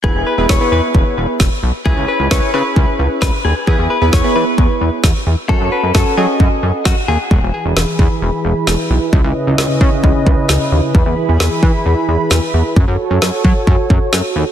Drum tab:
SD |--o---o-|--o---o-|--o---o-|--o---o-|
BD |o-o-o-o-|o-o-o-o-|o-o-o-o-|o-o-o-o-|

SD |--o---o-|--o---o-|--o---o-|--o---o-|
BD |o--o----|o--ooo--|o--o----|o--ooo--|